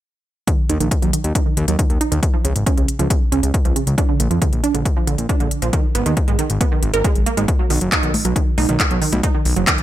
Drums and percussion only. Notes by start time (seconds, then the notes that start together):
0.47 kick, closed hi-hat
0.70 closed hi-hat
0.80 closed hi-hat
0.91 kick, closed hi-hat
1.02 closed hi-hat
1.13 closed hi-hat
1.24 closed hi-hat
1.35 kick, closed hi-hat
1.57 closed hi-hat
1.68 closed hi-hat
1.79 kick, closed hi-hat
1.90 closed hi-hat
2.01 closed hi-hat
2.12 closed hi-hat
2.23 kick, closed hi-hat
2.45 closed hi-hat
2.56 closed hi-hat
2.66 kick, closed hi-hat
2.78 closed hi-hat
2.88 closed hi-hat
2.99 closed hi-hat
3.10 kick, closed hi-hat
3.32 closed hi-hat
3.43 closed hi-hat
3.54 kick, closed hi-hat
3.65 closed hi-hat
3.76 closed hi-hat
3.87 closed hi-hat
3.98 kick, closed hi-hat
4.20 closed hi-hat
4.31 closed hi-hat
4.42 kick, closed hi-hat
4.53 closed hi-hat
4.64 closed hi-hat
4.75 closed hi-hat
4.85 kick, closed hi-hat
5.07 closed hi-hat
5.18 closed hi-hat
5.29 kick, closed hi-hat
5.40 closed hi-hat
5.51 closed hi-hat
5.62 closed hi-hat
5.73 kick, closed hi-hat
5.95 closed hi-hat
6.06 closed hi-hat
6.17 kick, closed hi-hat
6.28 closed hi-hat
6.39 closed hi-hat
6.50 closed hi-hat
6.61 kick, closed hi-hat
6.83 closed hi-hat
6.94 closed hi-hat
7.04 kick, closed hi-hat
7.15 closed hi-hat
7.26 closed hi-hat
7.37 closed hi-hat
7.48 kick, closed hi-hat
7.70 open hi-hat
7.81 closed hi-hat
7.92 kick, clap, closed hi-hat
8.03 closed hi-hat
8.14 open hi-hat, high conga
8.25 closed hi-hat
8.36 kick, closed hi-hat
8.58 open hi-hat, high conga
8.69 closed hi-hat
8.80 kick, clap, closed hi-hat
8.91 closed hi-hat
9.02 open hi-hat
9.13 closed hi-hat, high conga
9.23 kick, closed hi-hat
9.45 open hi-hat
9.56 closed hi-hat
9.67 kick, clap, closed hi-hat
9.78 closed hi-hat